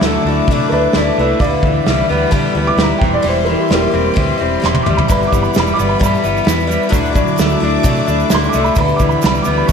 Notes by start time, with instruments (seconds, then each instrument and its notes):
Already playing: clean electric guitar D3 F#3, string section F#4 D5 D6, upright piano F#5
0.01 fingered electric bass D2, twelve-string acoustic guitar F#3 A3 D4, snare, open hi-hat
0.05 twelve-string acoustic guitar E4
0.24 fingered electric bass D2, twelve-string acoustic guitar D4 E4
0.30 twelve-string acoustic guitar A3
0.47 fingered electric bass C3, twelve-string acoustic guitar D3 F#3, kick, open hi-hat
0.51 twelve-string acoustic guitar A3 D4 E4
0.69 fingered electric bass D2, twelve-string acoustic guitar E4, upright piano A#4
0.74 twelve-string acoustic guitar A3 D4, upright piano B4
0.93 fingered electric bass D2, twelve-string acoustic guitar F#3 A3, snare, open hi-hat
0.97 twelve-string acoustic guitar D4 E4, upright piano D5
1.18 fingered electric bass C2, clean electric guitar A3, twelve-string acoustic guitar D4 E4, upright piano B4
1.23 twelve-string acoustic guitar A3
1.39 fingered electric bass D2, twelve-string acoustic guitar D3 E3 G3, string section G4, upright piano D5 F5, kick, open hi-hat
1.44 twelve-string acoustic guitar B3 E4, string section B5
1.63 fingered electric bass D2, clean electric guitar E3, twelve-string acoustic guitar B3 E4, kick
1.67 twelve-string acoustic guitar G3
1.86 fingered electric bass C2, twelve-string acoustic guitar E3 G3 B3 E4, snare, open hi-hat
2.09 fingered electric bass D2, twelve-string acoustic guitar G3 B3 E4
2.31 twelve-string acoustic guitar D3 E3 G3 B3 E4, fingered electric bass D3, kick, open hi-hat
2.55 fingered electric bass D2, twelve-string acoustic guitar G3 B3 E4
2.67 upright piano D6
2.77 fingered electric bass D2, twelve-string acoustic guitar E3 G3 B3 E4, snare, open hi-hat
2.82 upright piano A#5
2.98 fingered electric bass E1, twelve-string acoustic guitar E4, string section G4 C6, upright piano G5, kick
3.02 clean electric guitar E3, twelve-string acoustic guitar G3 C4
3.14 upright piano D5
3.22 fingered electric bass E1, twelve-string acoustic guitar E3 G3 C4 E4, open hi-hat
3.29 upright piano C5
3.45 twelve-string acoustic guitar C4 E4, upright piano A#4
3.49 clean electric guitar E3, twelve-string acoustic guitar G3
3.58 upright piano G4
3.68 fingered electric bass E1, twelve-string acoustic guitar E3 G3 C4, snare, open hi-hat
3.72 upright piano A#3 G4, twelve-string acoustic guitar E4
3.92 fingered electric bass E1, twelve-string acoustic guitar G3 C4 E4
4.14 fingered electric bass D2, twelve-string acoustic guitar E3 G3 C4 E4, kick, open hi-hat
4.38 fingered electric bass E1, twelve-string acoustic guitar C4 E4
4.42 twelve-string acoustic guitar G3
4.60 twelve-string acoustic guitar E3 G3 C4 E4, snare
4.64 fingered electric bass E1, upright piano C6
4.74 high tom
4.83 twelve-string acoustic guitar E4, upright piano D6, mid tom
4.87 fingered electric bass D2, twelve-string acoustic guitar G3 C4
4.97 upright piano B5, floor tom
5.08 fingered electric bass G1, twelve-string acoustic guitar G2 D3 E3 G3 B3 E4, upright piano A#5 B5, string section B5, kick, open hi-hat, shaker
5.22 shaker
5.27 upright piano D6
5.32 fingered electric bass G1, twelve-string acoustic guitar G3 B3 E4, kick, shaker
5.36 twelve-string acoustic guitar E3
5.43 upright piano B5, shaker
5.54 fingered electric bass E1, twelve-string acoustic guitar E3 G3 B3 E4, snare, open hi-hat, shaker
5.60 upright piano B5
5.67 shaker
5.74 twelve-string acoustic guitar E4, upright piano D6
5.79 fingered electric bass G1, twelve-string acoustic guitar E3 G3 B3, shaker
5.89 upright piano B5
5.99 twelve-string acoustic guitar G2 D3 E3 G3 B3 E4, fingered electric bass G2, upright piano A#5, kick, open hi-hat
6.04 upright piano B5, shaker
6.15 shaker
6.24 fingered electric bass G1, twelve-string acoustic guitar E3 G3 B3 E4, shaker
6.37 shaker
6.45 fingered electric bass E2, twelve-string acoustic guitar E3 G3 B3 E4, snare, open hi-hat
6.49 shaker
6.60 shaker
6.67 twelve-string acoustic guitar E3 G3 B3 E4
6.71 shaker
6.83 shaker
6.89 fingered electric bass D2, twelve-string acoustic guitar D3 F#3 A3 D4 E4, kick, open hi-hat
6.93 clean electric guitar D3, string section F#4 D6, shaker
7.05 shaker
7.13 clean electric guitar F#3, twelve-string acoustic guitar A3 D4 E4, kick, shaker
7.27 shaker
7.36 fingered electric bass D2, twelve-string acoustic guitar F#3 A3 D4 E4, snare, open hi-hat, shaker
7.50 shaker
7.61 fingered electric bass D2, twelve-string acoustic guitar A3 D4 E4
7.83 fingered electric bass C3, twelve-string acoustic guitar D3 F#3 A3 D4 E4, kick, open hi-hat, shaker
7.96 shaker
8.06 fingered electric bass D2, twelve-string acoustic guitar A3 D4 E4, shaker
8.20 shaker
8.29 fingered electric bass D2, twelve-string acoustic guitar F#3 A3 D4 E4, snare, open hi-hat, shaker
8.35 upright piano C6
8.44 shaker
8.49 twelve-string acoustic guitar E4, upright piano D6, shaker
8.54 fingered electric bass C2, twelve-string acoustic guitar A3 D4
8.64 upright piano B5, shaker
8.75 fingered electric bass D2, twelve-string acoustic guitar D3 E3 G3 B3 E4, string section G4 B5, upright piano A#5, kick, open hi-hat, shaker
8.81 upright piano B5
8.88 shaker
8.96 fingered electric bass D2, twelve-string acoustic guitar E4, upright piano D6, kick, shaker
9.01 clean electric guitar E3, twelve-string acoustic guitar G3 B3
9.09 upright piano B5, shaker
9.21 fingered electric bass C2, twelve-string acoustic guitar E3 G3 B3, snare, open hi-hat, shaker
9.25 twelve-string acoustic guitar E4, upright piano B5
9.35 shaker
9.42 twelve-string acoustic guitar E4, upright piano D6, shaker
9.47 fingered electric bass D2, twelve-string acoustic guitar G3 B3
9.58 upright piano B5
9.67 twelve-string acoustic guitar D3 E3 G3, fingered electric bass D3, upright piano C#6, kick, shaker